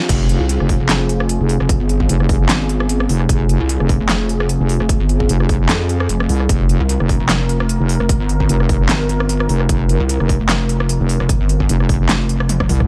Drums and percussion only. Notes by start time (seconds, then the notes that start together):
0.09 kick, closed hi-hat, crash
0.29 closed hi-hat
0.49 closed hi-hat
0.60 cross-stick
0.69 kick, open hi-hat
0.89 snare, clap, closed hi-hat
1.09 closed hi-hat
1.20 cross-stick
1.29 closed hi-hat
1.49 open hi-hat
1.60 cross-stick
1.69 kick, closed hi-hat
1.89 closed hi-hat
2.00 kick
2.09 closed hi-hat
2.20 cross-stick
2.29 kick, open hi-hat
2.49 snare, clap, closed hi-hat
2.69 closed hi-hat
2.80 cross-stick
2.89 closed hi-hat
3.00 cross-stick
3.09 open hi-hat
3.20 cross-stick
3.29 kick, closed hi-hat
3.49 closed hi-hat
3.69 closed hi-hat
3.80 cross-stick
3.89 kick, open hi-hat
4.09 snare, clap, closed hi-hat
4.29 closed hi-hat
4.40 cross-stick
4.49 closed hi-hat
4.69 open hi-hat
4.80 cross-stick
4.89 kick, closed hi-hat
5.09 closed hi-hat
5.20 kick
5.29 closed hi-hat
5.40 cross-stick
5.49 kick, open hi-hat
5.69 snare, clap, closed hi-hat
5.89 closed hi-hat
6.00 cross-stick
6.09 closed hi-hat
6.20 cross-stick
6.29 open hi-hat
6.40 cross-stick
6.49 kick, closed hi-hat
6.69 closed hi-hat
6.89 closed hi-hat
7.00 cross-stick
7.09 kick, open hi-hat
7.29 snare, clap, closed hi-hat
7.49 closed hi-hat
7.60 cross-stick
7.69 closed hi-hat
7.89 open hi-hat
8.00 cross-stick
8.09 kick, closed hi-hat
8.29 closed hi-hat
8.40 kick
8.49 closed hi-hat
8.60 cross-stick
8.69 kick, open hi-hat
8.89 snare, clap, closed hi-hat
9.09 closed hi-hat
9.20 cross-stick
9.29 closed hi-hat
9.40 cross-stick
9.49 open hi-hat
9.60 cross-stick
9.69 kick, closed hi-hat
9.89 closed hi-hat
10.09 closed hi-hat
10.20 cross-stick
10.29 kick, open hi-hat
10.49 snare, clap, closed hi-hat
10.69 closed hi-hat
10.80 cross-stick
10.89 closed hi-hat
11.09 open hi-hat
11.20 cross-stick
11.29 kick, closed hi-hat
11.49 closed hi-hat
11.60 kick
11.69 closed hi-hat
11.80 cross-stick
11.89 kick, open hi-hat
12.09 snare, clap, closed hi-hat
12.29 closed hi-hat
12.40 cross-stick
12.49 closed hi-hat, high tom
12.60 kick, cross-stick, high tom
12.69 open hi-hat, mid tom
12.80 cross-stick, mid tom